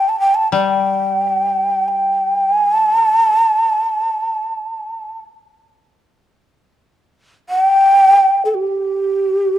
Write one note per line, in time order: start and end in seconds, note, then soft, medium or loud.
0.00 0.10 G5 medium
0.09 0.19 A5 medium
0.20 0.36 G5 medium
0.35 0.52 A5 medium
0.52 3.42 G3 medium
0.52 1.88 G5 medium
1.88 2.47 G5 medium
2.47 2.85 G#5 medium
2.85 5.18 A5 medium
7.50 7.62 F#5 loud
7.62 8.43 G5 loud
8.45 8.56 A4 soft
8.54 9.59 G4 medium